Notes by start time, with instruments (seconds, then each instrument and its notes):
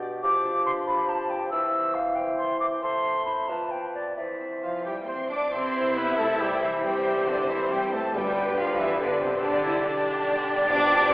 Already playing: bassoon B2, harp B2 D4 G4 B4 G5, clarinet G4
0.02 harp D5
0.23 harp F2, bassoon F3, clarinet G4, flute D6
0.45 harp D4
0.66 harp B4, flute C6
0.87 clarinet G4, harp D5, flute B5
1.09 harp G5, flute A5
1.30 harp D5, flute G5
1.51 harp E2, bassoon E3, clarinet C5, flute E6
1.74 harp C4
1.95 harp C5, flute F5
2.16 harp G4, clarinet C5, flute G5
2.38 harp G5, flute C6
2.60 harp C5, flute D6
2.82 harp A2, bassoon A3, clarinet C5, flute C6
3.05 harp C4
3.26 harp E4 C5, flute B5
3.48 harp F2, bassoon F3, clarinet B4, flute A5
3.71 harp B3, flute G5
3.95 harp G4 D5, flute D5
4.17 harp E2, bassoon E3, clarinet C5, flute E5
4.41 harp C4
4.63 cello section F3, french horn section F3, trumpet F4, harp C5, violin section F5
4.85 cello section G3, french horn section G3, trumpet G4, harp G4, violin section G5
5.08 cello section C4, french horn section C4, trumpet C5, harp G5, violin section C6
5.30 cello section D4, french horn section D4, harp C5, trumpet D5, violin section D6
5.52 double bass section C2, harp C3, bassoon E3, cello section C4, french horn section C4, viola section E4, clarinet G4, trumpet C5, flute C5, violin section E5 C6
5.75 harp E4
5.96 french horn section B3, cello section B3, trumpet B4, harp C5, violin section B5
6.19 cello section A3, french horn section A3, trumpet A4, harp E5, violin section A5
6.41 cello section G3, french horn section G3, trumpet G4, harp G5, violin section G5
6.62 french horn section E3, cello section E3, trumpet E4, harp E5, violin section E5
6.84 double bass section E1, harp E2, french horn section G3, cello section G3, viola section C4, trumpet G4, violin section C5 G5
7.07 harp E4
7.27 french horn section D3, cello section D3, trumpet D4, harp C5, violin section D5
7.49 french horn section E3, cello section E3, viola section C4, trumpet E4, harp E5, violin section E5
7.70 french horn section G3, cello section G3, trumpet G4, harp G5, violin section G5
7.93 cello section A3, french horn section A3, trumpet A4, harp E5, violin section A5
8.14 double bass section G1, timpani G2, harp G2, bassoon D3, french horn section G3, cello section G3, viola section B3, trumpet G4, clarinet G4, flute B4, violin section B4 G5
8.36 harp D4
8.57 cello section F3, french horn section F3, trumpet F4, harp B4, violin section F5
8.78 french horn section E3, cello section E3, viola section B3, trumpet E4, harp D5, violin section E5
8.99 french horn section D3, cello section D3, trumpet D4, violin section D5, harp G5
9.20 french horn section C3, cello section C3, trumpet C4, violin section C5, harp D5
9.42 double bass section B1, harp B2, french horn section D3, cello section D3, trumpet D4, viola section D4, violin section G4 D5, flute D5
9.64 harp D4, viola section E4
9.85 viola section D4, harp D5
10.06 harp G4
10.27 harp G5
10.49 harp D5
10.70 harp B2, bassoon F3, viola section B3, french horn section D4, cello section D4, clarinet G4, trumpet D5, violin section D6
10.91 harp F4